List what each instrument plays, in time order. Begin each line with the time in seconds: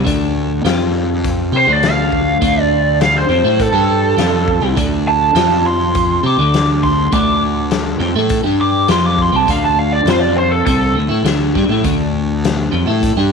0.04 fingered electric bass D2, clean electric guitar D3 A3 D4, kick, closed hi-hat
0.64 fingered electric bass F2, clean electric guitar F3 C4 F4, snare, closed hi-hat
1.24 kick, closed hi-hat
1.51 fingered electric bass C3, clean electric guitar C4 G4
1.57 lead electric guitar C5
1.67 fingered electric bass D2, clean electric guitar D3 A3 D4
1.72 lead electric guitar D5
1.83 lead electric guitar F5, snare, closed hi-hat
2.12 kick
2.41 fingered electric bass D2, clean electric guitar D3 A3 D4, kick, closed hi-hat
2.62 lead electric guitar D5
3.01 lead electric guitar F5, snare, closed hi-hat
3.18 lead electric guitar C5
3.29 fingered electric bass F2, clean electric guitar F3 C4
3.43 fingered electric bass A2, clean electric guitar A3 E4 A4
3.60 lead electric guitar A4, kick, closed hi-hat
3.72 fingered electric bass G2, clean electric guitar G3 D4 G4
4.17 fingered electric bass F2, clean electric guitar F3 C4 F4, snare, closed hi-hat
4.48 kick
4.60 fingered electric bass C2, clean electric guitar C3 G3
4.76 fingered electric bass D2, clean electric guitar D3 A3 D4, kick, closed hi-hat
5.08 lead electric guitar A5
5.35 fingered electric bass F2, clean electric guitar F3 C4 F4, snare, closed hi-hat
5.66 lead electric guitar C6
5.95 kick, closed hi-hat
6.23 fingered electric bass C3, clean electric guitar C4 G4, lead electric guitar D6
6.37 fingered electric bass D2, clean electric guitar D3 A3 D4
6.54 snare, closed hi-hat
6.83 lead electric guitar C6, kick, snare
7.12 fingered electric bass D2, clean electric guitar D3 A3 D4, lead electric guitar D6, kick, closed hi-hat
7.71 snare, closed hi-hat
7.99 fingered electric bass F2, clean electric guitar F3 C4
8.15 fingered electric bass A2, clean electric guitar A3 E4 A4
8.29 kick, closed hi-hat
8.43 fingered electric bass G2, clean electric guitar G3 D4 G4
8.61 lead electric guitar D6
8.88 fingered electric bass F2, clean electric guitar F3 C4 F4, lead electric guitar C6, snare, closed hi-hat
9.06 lead electric guitar D6
9.18 kick
9.23 lead electric guitar C6
9.32 fingered electric bass C2, clean electric guitar C3 G3
9.36 lead electric guitar A5
9.47 fingered electric bass D2, clean electric guitar D3 A3 D4, lead electric guitar F5, kick, closed hi-hat
9.64 lead electric guitar A5
9.79 lead electric guitar F5
9.92 lead electric guitar D5
10.05 fingered electric bass F2, clean electric guitar F3 C4 F4, snare, closed hi-hat
10.10 lead electric guitar C5
10.21 lead electric guitar D5
10.37 lead electric guitar C5
10.51 lead electric guitar A4
10.66 fingered electric bass C2, clean electric guitar C3 G3 C4, lead electric guitar A4, kick, closed hi-hat
10.94 fingered electric bass D2, clean electric guitar D3 A3
11.08 fingered electric bass A2, clean electric guitar A3 E4
11.23 fingered electric bass D2, clean electric guitar D3 A3 D4, snare, closed hi-hat
11.54 fingered electric bass G2, clean electric guitar G3 D4, kick, snare
11.69 fingered electric bass A2, clean electric guitar A3 E4
11.83 fingered electric bass D2, clean electric guitar D3 A3 D4, kick, closed hi-hat
12.45 snare, closed hi-hat
12.71 fingered electric bass F2, clean electric guitar F3 C4
12.86 fingered electric bass A2, clean electric guitar A3 E4 A4
13.03 kick, closed hi-hat
13.16 fingered electric bass G2, clean electric guitar G3 D4 G4